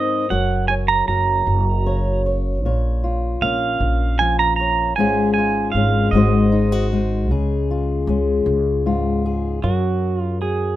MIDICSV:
0, 0, Header, 1, 4, 480
1, 0, Start_track
1, 0, Key_signature, -5, "major"
1, 0, Tempo, 777202
1, 192, Time_signature, 6, 3, 24, 8
1, 6647, End_track
2, 0, Start_track
2, 0, Title_t, "Pedal steel guitar"
2, 0, Program_c, 0, 26
2, 0, Note_on_c, 0, 75, 67
2, 176, Note_off_c, 0, 75, 0
2, 187, Note_on_c, 0, 78, 86
2, 413, Note_off_c, 0, 78, 0
2, 421, Note_on_c, 0, 80, 80
2, 455, Note_off_c, 0, 80, 0
2, 545, Note_on_c, 0, 82, 86
2, 659, Note_off_c, 0, 82, 0
2, 667, Note_on_c, 0, 82, 93
2, 1364, Note_off_c, 0, 82, 0
2, 2113, Note_on_c, 0, 77, 96
2, 2588, Note_on_c, 0, 80, 98
2, 2606, Note_off_c, 0, 77, 0
2, 2710, Note_off_c, 0, 80, 0
2, 2712, Note_on_c, 0, 82, 88
2, 2811, Note_off_c, 0, 82, 0
2, 2818, Note_on_c, 0, 82, 96
2, 3060, Note_off_c, 0, 82, 0
2, 3063, Note_on_c, 0, 80, 104
2, 3289, Note_off_c, 0, 80, 0
2, 3296, Note_on_c, 0, 80, 93
2, 3530, Note_on_c, 0, 77, 85
2, 3550, Note_off_c, 0, 80, 0
2, 3775, Note_on_c, 0, 75, 79
2, 3788, Note_off_c, 0, 77, 0
2, 4238, Note_off_c, 0, 75, 0
2, 5953, Note_on_c, 0, 66, 71
2, 6292, Note_off_c, 0, 66, 0
2, 6292, Note_on_c, 0, 65, 71
2, 6430, Note_off_c, 0, 65, 0
2, 6433, Note_on_c, 0, 68, 77
2, 6647, Note_off_c, 0, 68, 0
2, 6647, End_track
3, 0, Start_track
3, 0, Title_t, "Steel-string acoustic guitar"
3, 0, Program_c, 1, 25
3, 0, Note_on_c, 1, 44, 70
3, 0, Note_on_c, 1, 60, 54
3, 0, Note_on_c, 1, 63, 58
3, 0, Note_on_c, 1, 70, 59
3, 0, Note_on_c, 1, 72, 67
3, 157, Note_off_c, 1, 60, 0
3, 158, Note_off_c, 1, 72, 0
3, 159, Note_off_c, 1, 63, 0
3, 185, Note_off_c, 1, 44, 0
3, 185, Note_on_c, 1, 54, 69
3, 190, Note_on_c, 1, 66, 55
3, 191, Note_off_c, 1, 70, 0
3, 193, Note_on_c, 1, 70, 55
3, 199, Note_on_c, 1, 73, 60
3, 429, Note_off_c, 1, 73, 0
3, 431, Note_on_c, 1, 73, 60
3, 663, Note_off_c, 1, 66, 0
3, 671, Note_on_c, 1, 66, 53
3, 674, Note_off_c, 1, 70, 0
3, 676, Note_on_c, 1, 70, 50
3, 1149, Note_off_c, 1, 73, 0
3, 1149, Note_on_c, 1, 49, 60
3, 1152, Note_on_c, 1, 73, 67
3, 1394, Note_off_c, 1, 73, 0
3, 1396, Note_on_c, 1, 73, 66
3, 1601, Note_off_c, 1, 49, 0
3, 1602, Note_off_c, 1, 66, 0
3, 1605, Note_off_c, 1, 70, 0
3, 1628, Note_off_c, 1, 54, 0
3, 1638, Note_on_c, 1, 46, 73
3, 1639, Note_off_c, 1, 73, 0
3, 1642, Note_on_c, 1, 73, 66
3, 1875, Note_on_c, 1, 65, 59
3, 2117, Note_on_c, 1, 58, 59
3, 2120, Note_on_c, 1, 61, 51
3, 2593, Note_off_c, 1, 65, 0
3, 2597, Note_on_c, 1, 53, 70
3, 2602, Note_on_c, 1, 65, 65
3, 2834, Note_off_c, 1, 73, 0
3, 2841, Note_on_c, 1, 73, 64
3, 3045, Note_off_c, 1, 46, 0
3, 3045, Note_off_c, 1, 53, 0
3, 3045, Note_off_c, 1, 58, 0
3, 3046, Note_off_c, 1, 61, 0
3, 3047, Note_off_c, 1, 73, 0
3, 3048, Note_off_c, 1, 65, 0
3, 3074, Note_on_c, 1, 44, 75
3, 3077, Note_on_c, 1, 56, 62
3, 3082, Note_on_c, 1, 61, 57
3, 3085, Note_on_c, 1, 65, 59
3, 3089, Note_on_c, 1, 68, 73
3, 3316, Note_off_c, 1, 65, 0
3, 3324, Note_on_c, 1, 65, 60
3, 3551, Note_off_c, 1, 56, 0
3, 3551, Note_off_c, 1, 61, 0
3, 3554, Note_on_c, 1, 56, 61
3, 3558, Note_on_c, 1, 61, 59
3, 3765, Note_off_c, 1, 61, 0
3, 3768, Note_off_c, 1, 65, 0
3, 3787, Note_off_c, 1, 44, 0
3, 3794, Note_on_c, 1, 44, 81
3, 3795, Note_off_c, 1, 56, 0
3, 3797, Note_on_c, 1, 56, 72
3, 3801, Note_on_c, 1, 63, 66
3, 3804, Note_on_c, 1, 66, 67
3, 3807, Note_off_c, 1, 68, 0
3, 3810, Note_on_c, 1, 72, 75
3, 4019, Note_off_c, 1, 63, 0
3, 4024, Note_off_c, 1, 66, 0
3, 4027, Note_on_c, 1, 63, 68
3, 4151, Note_off_c, 1, 63, 0
3, 4151, Note_on_c, 1, 66, 47
3, 4272, Note_off_c, 1, 56, 0
3, 4274, Note_on_c, 1, 56, 65
3, 4280, Note_on_c, 1, 63, 67
3, 4486, Note_off_c, 1, 63, 0
3, 4490, Note_off_c, 1, 72, 0
3, 4510, Note_off_c, 1, 66, 0
3, 4512, Note_off_c, 1, 44, 0
3, 4514, Note_on_c, 1, 49, 72
3, 4517, Note_on_c, 1, 68, 72
3, 4760, Note_on_c, 1, 65, 63
3, 4990, Note_off_c, 1, 56, 0
3, 4993, Note_on_c, 1, 56, 63
3, 4997, Note_on_c, 1, 61, 54
3, 5468, Note_off_c, 1, 65, 0
3, 5471, Note_off_c, 1, 49, 0
3, 5472, Note_on_c, 1, 44, 73
3, 5475, Note_on_c, 1, 65, 62
3, 5709, Note_off_c, 1, 68, 0
3, 5717, Note_on_c, 1, 68, 66
3, 5922, Note_off_c, 1, 56, 0
3, 5923, Note_off_c, 1, 65, 0
3, 5924, Note_off_c, 1, 61, 0
3, 5950, Note_off_c, 1, 44, 0
3, 5950, Note_on_c, 1, 54, 59
3, 5955, Note_on_c, 1, 70, 58
3, 6431, Note_on_c, 1, 66, 55
3, 6641, Note_off_c, 1, 66, 0
3, 6642, Note_off_c, 1, 70, 0
3, 6647, Note_off_c, 1, 54, 0
3, 6647, Note_off_c, 1, 68, 0
3, 6647, End_track
4, 0, Start_track
4, 0, Title_t, "Upright bass"
4, 0, Program_c, 2, 32
4, 191, Note_on_c, 2, 30, 78
4, 647, Note_off_c, 2, 30, 0
4, 666, Note_on_c, 2, 30, 78
4, 897, Note_off_c, 2, 30, 0
4, 906, Note_on_c, 2, 30, 86
4, 1629, Note_off_c, 2, 30, 0
4, 1629, Note_on_c, 2, 34, 91
4, 2086, Note_off_c, 2, 34, 0
4, 2110, Note_on_c, 2, 34, 79
4, 2339, Note_off_c, 2, 34, 0
4, 2349, Note_on_c, 2, 34, 88
4, 3072, Note_off_c, 2, 34, 0
4, 3072, Note_on_c, 2, 32, 90
4, 3527, Note_off_c, 2, 32, 0
4, 3548, Note_on_c, 2, 32, 81
4, 3777, Note_off_c, 2, 32, 0
4, 3784, Note_on_c, 2, 32, 94
4, 4505, Note_off_c, 2, 32, 0
4, 4505, Note_on_c, 2, 37, 92
4, 4963, Note_off_c, 2, 37, 0
4, 4986, Note_on_c, 2, 37, 98
4, 5215, Note_off_c, 2, 37, 0
4, 5224, Note_on_c, 2, 37, 95
4, 5921, Note_off_c, 2, 37, 0
4, 5949, Note_on_c, 2, 42, 91
4, 6644, Note_off_c, 2, 42, 0
4, 6647, End_track
0, 0, End_of_file